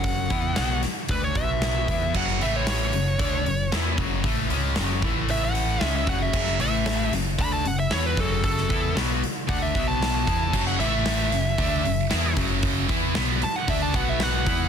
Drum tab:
CC |----------------|x---------------|----------------|x---------------|
HH |o-o-o-o-o-o-o-o-|--o-o-o-o-o-o-o-|o-o-o-o-o-o-o-o-|--o-o-o-o-o-o-o-|
SD |----o-o-----o---|-o--o-------o---|----o-------o---|-o--o-o-----o---|
BD |o-o-----o-o---o-|o-------o-----o-|o-----o-------o-|o-------o-----o-|

CC |----------------|x---------------|----------------|
HH |o-o-o-o-o-o-o-o-|--o-o-o-o-o-o-o-|o-o-o-o-o-o-o-o-|
SD |-o--o-------o---|-o--o-o-----o---|----o-------o---|
BD |o-o-----o-o---o-|o-------o-----o-|o-o-----o-o---o-|